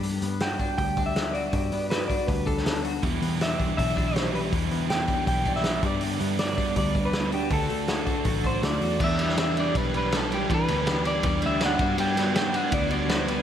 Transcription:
<<
  \new Staff \with { instrumentName = "Clean electric guitar" } { \time 4/4 \key g \major \tempo 4 = 161 r4 g''4 g''8. e''8. d''8~ | d''4 b'8 d''8 b'8 a'4 r8 | r4 e''4 e''8. c''8. b'8 | r4 g''4 g''8. e''8. d''8 |
r4 d''4 d''8. b'8. g'8 | a'2~ a'8 c''8 d''4 | e''4 e''8 d''8 b'8 b'8 a'8 g'8 | b'4. d''4 e''8 fis''4 |
g''4 g''8 fis''8 d''8 d''8 c''8 b'8 | }
  \new Staff \with { instrumentName = "Clean electric guitar" } { \time 4/4 \key g \major g8 b8 fis'8 d'8 g8 d'8 b8 fis'8 | g8 b8 fis'8 d'8 g8 d'8 b8 fis'8 | e8 b8 g'8 d'8 e8 d'8 b8 g'8 | e8 b8 g'8 d'8 e8 d'8 b8 g8 |
g8 b8 fis'8 d'8 g8 d'8 b8 fis'8 | d8 a8 fis'8 d'8 fis8 d'8 a8 fis'8 | <e b d' g'>8 <b d' g'>8 <e b d' g'>8 <e b d' g'>8 <e b d' g'>8 <b d' g'>8 <e b d' g'>8 <b d' g'>8 | <e b d' g'>8 <b d' g'>8 <e b d' g'>8 <e b d' g'>8 <e b d' g'>8 <b d' g'>8 <e b d' g'>8 <g b d' fis'>8 |
<g b d' fis'>8 <b d' fis'>8 <g b d' fis'>8 <g b d' fis'>8 <g b d' fis'>8 <b d' fis'>8 <g b d' fis'>8 <b d' fis'>8 | }
  \new Staff \with { instrumentName = "Overdriven electric guitar" } { \clef bass \time 4/4 \key g \major r1 | r1 | <e, b, e g e' g'>2 <e, b, e g e' g'>2 | <e, b, e g e' g'>2 <e, b, e g e' g'>4. <g, d g b d' g'>8~ |
<g, d g b d' g'>4. <g, d g b d'>2 r8 | <d a d' fis'>2 <d a d' fis'>2 | e,8 g8 e8 d'8 g8 d'8 g8 e8 | e,8 g8 e8 d'8 g8 d'8 g8 g8 |
g8 b8 g8 d'8 b8 d'8 b8 g8 | }
  \new Staff \with { instrumentName = "Picked electric bass" } { \clef bass \time 4/4 \key g \major g,8 g,4. d,2 | g,8 g,4. d,2 | e,8 e,4. b,,2 | e,8 e,4. b,,4. g,8~ |
g,8 g,4. d,2 | d,8 d,4. a,,4 d,8 e,8 | e,2 b,,2 | e8 d,4. e,8 d,4 g,8 |
g,2 d,2 | }
  \new DrumStaff \with { instrumentName = "Drums" } \drummode { \time 4/4 hho8 hho8 <hho sn>8 <hho bd>8 <hho bd>8 <hho bd>8 <hho sn>8 hho8 | <hho bd>8 hho8 <hho sn>8 <hho bd>8 <hho bd>8 <hho bd>16 sn16 <hho sn>8 hho8 | <hho bd>8 hho8 <hho sn>8 <hho bd>8 <hho bd>8 <hho bd>8 <hho sn>8 hho8 | <hho bd>8 hho8 <hho sn>8 <hho bd>8 <hho bd>8 <hho bd>16 sn16 <hho sn>8 <hho bd>8 |
hho8 hho8 <hho sn>8 <hho bd>8 <hho bd>8 <hho bd>8 <hho sn>8 hho8 | <hho bd>8 hho8 <hho sn>8 <hho bd>8 <hho bd>8 <hho bd>8 <hho sn>8 hho8 | <cymc bd>8 cymr16 sn16 <cymr sn>8 cymr8 <bd cymr>8 cymr8 <cymr sn>8 cymr8 | <bd cymr>8 cymr8 <cymr sn>8 cymr8 <bd cymr>8 cymr8 <cymr sn>8 <bd cymr>8 |
cymr8 <cymr sn>8 <cymr sn>8 cymr8 <bd cymr>8 cymr8 <cymr sn>8 cymr8 | }
>>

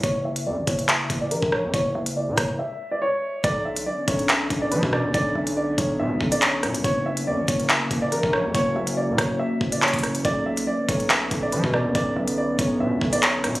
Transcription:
<<
  \new Staff \with { instrumentName = "Upright piano" } { \time 4/4 \key b \minor \tempo 4 = 141 cis''8 e''8 d''8 cis''8 e''8. d''16 ais'8 cis''8 | cis''8 e''8 d''8 cis''8 e''8. d''16 cis''4 | d''8 e''8 d''8 cis''8 e''8. d''16 b'8 d''8 | d''8 e''8 d''8 cis''8 e''8. d''16 cis''4 |
cis''8 e''8 d''8 cis''8 e''8. d''16 ais'8 cis''8 | cis''8 e''8 d''8 cis''8 e''8. d''16 cis''4 | d''8 e''8 d''8 cis''8 e''8. d''16 b'8 d''8 | d''8 e''8 d''8 cis''8 e''8. d''16 cis''4 | }
  \new Staff \with { instrumentName = "Ambient pad" } { \time 4/4 \key b \minor << { r1 | r1 | cis'1~ | cis'1 |
cis'1~ | cis'1~ | cis'1~ | cis'1 | } \\ { r1 | r1 | <d b>1~ | <d b>1 |
<fis ais>1~ | <fis ais>1 | <d b>1~ | <d b>1 | } >> }
  \new Staff \with { instrumentName = "808-style bass" } { \clef bass \time 4/4 \key b \minor fis,,4 fis,16 fis,,16 fis,,4 fis,,8 ais,,16 ais,,8 fis,16 | fis,,8 fis,,8. ais,16 fis,,8 r2 | b,,4 r8 b,,4 b,,8 fis16 b,8 d,16 | b,,8 b,,4 b,,8 b,16 b,,16 b,,4 b,16 b,,16 |
fis,,4 fis,16 fis,,16 fis,,4 fis,,8 ais,,16 ais,,8 fis,16 | fis,,8 fis,,8. ais,16 fis,,8 r8 fis,,8. fis,,8. | b,,4 r8 b,,4 b,,8 fis16 b,8 d,16 | b,,8 b,,4 b,,8 b,16 b,,16 b,,4 b,16 b,,16 | }
  \new DrumStaff \with { instrumentName = "Drums" } \drummode { \time 4/4 <hh bd>8. hh16 r8 <hh bd>16 hh16 <hc hh>8 <hh bd>8 hh16 bd16 ss8 | <hh bd>8. hh16 r8 <hh bd ss>8 r4 r4 | <hh bd>8. hh16 r8 <hh bd>16 hh16 <hc hh>8 <hh bd>8 hh16 bd16 ss8 | <hh bd>8. hh16 r8 <hh bd>8 r8 bd16 hh16 <hc hh>8 <hh ss>16 hh16 |
<hh bd>8. hh16 r8 <hh bd>16 hh16 <hc hh>8 <hh bd>8 hh16 bd16 ss8 | <hh bd>8. hh16 r8 <hh bd ss>8 r8 bd16 hh16 <hc hh>32 hh32 <hh bd>32 hh32 <hh ss>16 hh16 | <hh bd>8. hh16 r8 <hh bd>16 hh16 <hc hh>8 <hh bd>8 hh16 bd16 ss8 | <hh bd>8. hh16 r8 <hh bd>8 r8 bd16 hh16 <hc hh>8 <hh ss>16 hh16 | }
>>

